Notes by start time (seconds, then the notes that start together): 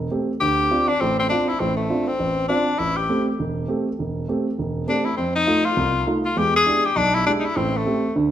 0.11 A3 C4 G4
0.40 D2 G4
0.71 C4 D4 F4
0.88 D4
1.00 A1 A2 C4
1.19 C4
1.29 C4 D4 F4
1.49 E4
1.60 A1 A2 C4
1.76 A3
1.90 C4 D4 F4
2.08 C4
2.20 A1
2.48 C4 D4 F4
2.78 A1 E4
2.97 G4
3.09 A3 C4 G4
3.39 E1
3.68 A3 C4 G4
3.99 E1
4.28 A3 C4 G4
4.58 E1
4.87 A3 C4 D4 G4
5.05 E4
5.17 F2 C4
5.35 D#4
5.47 A3 D#4 F4
5.65 F4
5.77 C2
6.07 A3 D#4 F4
6.25 F4
6.37 E2 G#3 G4
6.56 G#4
6.66 G#3 D4 E4 G4
6.85 G4
6.96 B1 D4
7.14 E4
7.26 G#3 D4 E4 G4
7.40 D#4
7.46 E4
7.56 A1 A2 C4
7.77 A3
7.85 A3 C4 G4
8.16 D2 D3